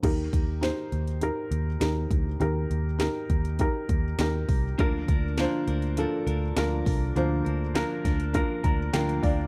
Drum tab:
CC |x---------------|----------------|----------------|----------------|
HH |x-x-x-xxx-x-x-x-|x-x-x-xxx-x-x-o-|x-x-x-xxx-x-x-o-|x-x-x-xxx-x-xxo-|
SD |----o-------o---|----o-------o---|----o-------o---|----o-o-----o---|
BD |o-o-----------o-|------o-o-o---o-|o-o-----------o-|------o-o-o---o-|